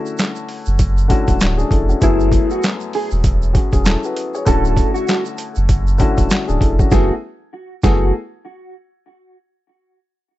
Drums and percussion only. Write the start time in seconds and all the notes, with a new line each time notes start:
0.06 shaker
0.18 snare, clap, closed hi-hat, shaker
0.36 shaker
0.49 open hi-hat
0.66 shaker
0.79 kick, closed hi-hat, shaker
0.97 shaker
1.10 kick, closed hi-hat
1.28 kick, closed hi-hat, shaker
1.40 snare, clap, closed hi-hat, shaker
1.59 shaker
1.71 kick, closed hi-hat
1.90 shaker
2.02 kick, closed hi-hat, shaker
2.20 shaker
2.32 kick, closed hi-hat, shaker
2.51 shaker
2.63 snare, clap, closed hi-hat, shaker
2.81 shaker
2.93 open hi-hat
3.11 shaker
3.24 kick, closed hi-hat, shaker
3.43 shaker
3.55 kick, closed hi-hat
3.73 kick, closed hi-hat, shaker
3.85 snare, clap, closed hi-hat, shaker
4.04 shaker
4.16 closed hi-hat
4.35 shaker
4.47 kick, closed hi-hat, shaker
4.65 shaker
4.77 kick, closed hi-hat, shaker
4.95 shaker
5.08 snare, clap, closed hi-hat, shaker
5.25 shaker
5.38 closed hi-hat, shaker
5.56 shaker
5.69 kick, closed hi-hat, shaker
5.88 shaker
5.99 kick, closed hi-hat, shaker
6.18 kick, closed hi-hat, shaker
6.30 snare, clap, closed hi-hat, shaker
6.49 shaker
6.61 kick, closed hi-hat
6.79 kick, shaker
6.91 kick, snare, shaker
7.83 kick, snare, shaker